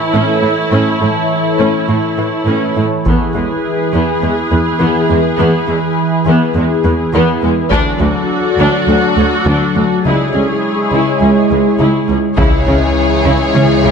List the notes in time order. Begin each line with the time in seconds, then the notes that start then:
Already playing: E3 E4 A4 C#5
0.14 A2 A3 C#4
0.42 A2 A3 E4
0.72 A2 A3 C#4
1.01 A2 A3 A4
1.59 A2 A3 C#4
1.88 A2 A3 E4
2.18 A2 E3 E4
2.47 A2 A3 C#4
2.76 A2 A3 E4
3.05 E2 E3 B3 E4 G#4 B4, taiko
3.35 E2 G#3 E4
3.93 E2 E3 B3
4.22 E2 G#3 B3
4.51 E2 E3 B3
4.80 E2 E3 B3
5.09 E2 G#3 B3
5.39 E2 E3 B3
5.68 E2 G#3 E4
6.26 E2 E3 B3
6.55 E2 G#3 B3
6.84 E2 E3 B3
7.13 E2 E3 B3
7.43 E2 G#3 B3
7.71 D2 D3 F#3 D4 F#4 A4 D5, taiko
8.00 D2 A3 D4
8.58 D2 D3 D4
8.88 D2 A3
9.17 D2 F#3 A3
9.46 D2 D3 D4
9.76 D2 A3
10.05 C#2 C#3 G#3 E4 G#4 C#5
10.34 C#2 C#4
10.92 C#2 C#3 E4
11.21 C#2 G#3 C#4
11.50 C#2 G#3
11.79 C#2 C#3 E4
12.09 C#2 G#3 C#4
12.37 C#2 C#3 E3 G#3 C#4 E4 G#4 C#5, taiko
12.67 C#2 C#3 C#4
13.25 C#2 C#3 E4
13.54 C#2 C#3 G#3 C#4
13.83 C#2 C#3 G#3